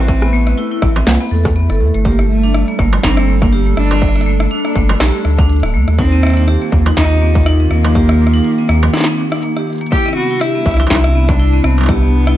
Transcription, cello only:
Already playing: C4
0.33 B3
0.58 A3
2.05 A#3
2.30 A3
2.79 A#3
3.04 C4
3.42 A#3
3.77 D4
5.99 C4
6.97 D#4
7.71 A#3
9.92 G4
10.16 F#4
10.41 E4
10.90 E4
11.29 D4
11.64 C4
11.89 B3

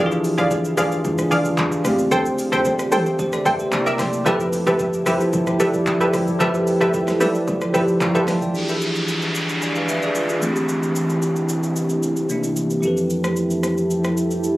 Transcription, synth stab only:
Already playing: G#4 D5 F5
0.38 G#4 D5 F5
0.77 G#4 D5 F5
1.31 G#4 D5 F5
2.11 A4 C5 G5
2.52 A4 C5 G5
2.92 A4 C5 G5
3.45 A4 C5 G5
3.86 A#4 D5 E5
4.26 G4 A4 B4 E5
4.66 G4 A4 B4 E5
5.06 G4 A4 B4 E5
5.60 G4 A4 B4 E5
6.00 G4 A4 B4 E5
6.40 G4 A4 B4 E5
6.80 G4 A4 B4 E5
7.20 G4 A4 B4 E5
7.74 G4 A4 B4 E5
8.15 G4 A4 B4 E5

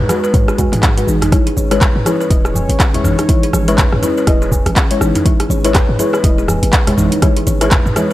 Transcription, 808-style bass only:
0.34 G#2
0.72 G#2
1.07 G#1
1.57 G#1
1.96 G#2
2.31 D#1
2.70 G#1
3.04 G#1
3.53 G#1
3.92 G#2
4.27 D#1
4.66 G#1
5.01 G#1
5.50 G#1
5.89 G#2
6.24 D#1
6.63 G#1
6.98 G#1
7.47 G#1
7.86 G#2

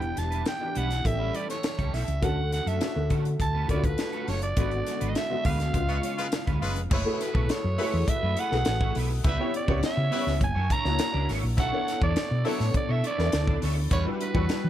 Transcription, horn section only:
5.89 G#3 F4 B4
6.18 G#3 F4 B4
6.62 G#3 F4 B4
6.92 G#3 E4 B4
7.79 G#3 E4 B4
9.24 G3 E4 B4
10.12 G3 E4 B4
11.57 F#3 E4 A4
12.45 F#3 E4 A4
13.91 G3 F#4 B4

